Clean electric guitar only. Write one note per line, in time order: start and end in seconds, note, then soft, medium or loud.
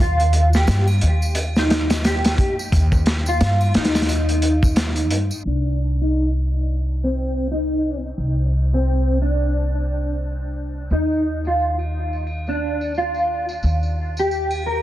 0.01 0.48 F4 loud
0.56 0.85 G4 medium
1.58 2.01 D#4 medium
2.06 2.53 G4 medium
3.28 3.71 F4 loud
3.76 5.35 D#4 loud
5.47 5.94 D4 medium
6.01 6.30 D#4 medium
7.04 7.46 C4 medium
7.51 7.98 D#4 medium
8.74 9.17 C4 medium
9.22 10.80 D4 medium
10.92 11.39 D#4 medium
11.47 11.76 F4 medium
12.49 12.91 D4 medium
12.98 13.44 F4 medium
14.19 14.62 G4 medium
14.66 14.82 A#4 medium